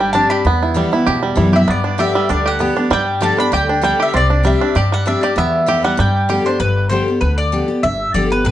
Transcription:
Already playing: upright bass G1, steel-string acoustic guitar G2, five-string banjo D4 G4, mandolin G5
0.00 five-string banjo G3
0.13 steel-string acoustic guitar G3 C4 D4 G4, five-string banjo D4, mandolin A5
0.30 five-string banjo G4, mandolin B5
0.45 steel-string acoustic guitar E2, upright bass E2, five-string banjo B3
0.63 five-string banjo E4
0.74 steel-string acoustic guitar E3 G3 B3 E4, five-string banjo G3
0.92 steel-string acoustic guitar B3 E4, five-string banjo E4
1.06 upright bass E2, steel-string acoustic guitar B2, five-string banjo G4
1.23 five-string banjo G3
1.36 upright bass F#2, steel-string acoustic guitar E3 G3 B3 E4, five-string banjo E4
1.53 steel-string acoustic guitar B3 E4, five-string banjo G4, mandolin E5
1.68 steel-string acoustic guitar G2, upright bass G2, five-string banjo B3, mandolin D5
1.84 five-string banjo D4
1.98 steel-string acoustic guitar D3 G3 B3 G4, five-string banjo G4, mandolin E5
2.15 five-string banjo G3
2.29 upright bass D2, steel-string acoustic guitar D3, five-string banjo D4, mandolin D5
2.46 five-string banjo G4, mandolin F#5
2.59 steel-string acoustic guitar D3 G3 B3 G4, five-string banjo B3
2.77 steel-string acoustic guitar B3, five-string banjo D4
2.90 steel-string acoustic guitar G2, upright bass G2, five-string banjo G3, mandolin G5
3.21 steel-string acoustic guitar D3 G3 B3 G4, five-string banjo G4, mandolin A5
3.37 steel-string acoustic guitar B3 G4, five-string banjo D4, mandolin B5
3.52 upright bass D2, steel-string acoustic guitar D3, five-string banjo G4, mandolin G5
3.69 five-string banjo D4
3.82 steel-string acoustic guitar D3 G3 B3 G4, five-string banjo G3, mandolin G5
4.00 five-string banjo G4, mandolin E5
4.14 upright bass C2, steel-string acoustic guitar C3, five-string banjo C4, mandolin D5
4.30 five-string banjo D4
4.43 steel-string acoustic guitar G3 C4 D4 G4, five-string banjo G3, mandolin E5
4.61 five-string banjo D4
4.75 steel-string acoustic guitar G2, upright bass G2, five-string banjo G4, mandolin D5
4.92 five-string banjo G3, mandolin F#5
5.06 steel-string acoustic guitar G3 C4 D4 G4, five-string banjo D4, mandolin E5
5.21 steel-string acoustic guitar D4 G4, five-string banjo G4, mandolin D5
5.36 steel-string acoustic guitar E2, upright bass E2, five-string banjo B3, mandolin E5
5.66 steel-string acoustic guitar E3 G3 B3 E4, five-string banjo G4
5.82 five-string banjo G3, steel-string acoustic guitar B3 E4, mandolin F#5
5.97 steel-string acoustic guitar G2, upright bass G2, five-string banjo G3, mandolin G5
6.29 steel-string acoustic guitar D3 G3 B3 G4, five-string banjo G4
6.45 steel-string acoustic guitar B3 G4, five-string banjo D4, mandolin C5
6.60 upright bass G1, steel-string acoustic guitar G2, mandolin B4
6.90 steel-string acoustic guitar D3 G3 B3 G4, mandolin C5
7.08 steel-string acoustic guitar B3 G4
7.21 upright bass D2, steel-string acoustic guitar D3, mandolin B4
7.38 mandolin D5
7.52 steel-string acoustic guitar D3 G3 B3 G4
7.68 steel-string acoustic guitar B3 G4
7.83 upright bass G1, steel-string acoustic guitar G2, mandolin E5
8.14 upright bass G1, steel-string acoustic guitar D3 G3 B3 G4, mandolin D5
8.30 steel-string acoustic guitar B3 G4, mandolin B4
8.44 upright bass A1, steel-string acoustic guitar A2, mandolin B4

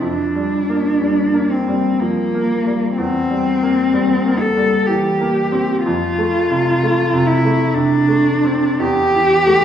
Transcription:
0.01 grand piano F2, cello D4
0.36 grand piano G3
0.69 grand piano A#3
1.02 grand piano G3
1.34 grand piano A#3
1.50 cello C4
1.68 grand piano G3
2.00 grand piano F3, cello A#3
2.34 grand piano A#3
2.66 grand piano G3
2.97 grand piano E2, cello C4
3.29 grand piano G3
3.62 grand piano A#3
3.93 grand piano G3
4.26 grand piano A#3
4.40 cello A4
4.57 grand piano G3
4.86 grand piano E3, cello G4
5.20 grand piano A#3
5.52 grand piano C4
5.83 grand piano F2, cello F4
6.18 grand piano A3
6.50 grand piano C3
6.83 grand piano A3
7.13 grand piano C3
7.26 cello E4
7.45 grand piano A3
7.74 grand piano C3, cello D4
8.08 grand piano A3
8.44 grand piano C4
8.80 grand piano E2, cello G4
9.15 grand piano E3
9.47 grand piano A3

